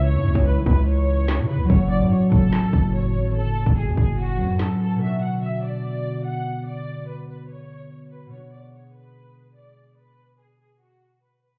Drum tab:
CP |------------x---|--------x-------|------------x---|----------------|
SD |------------o---|--------o-------|------------o---|----------------|
BD |---o--o---------|o-----o---o-----|---o--o---------|----------------|

CP |----------------|----------------|----------------|
SD |----------------|----------------|----------------|
BD |----------------|----------------|----------------|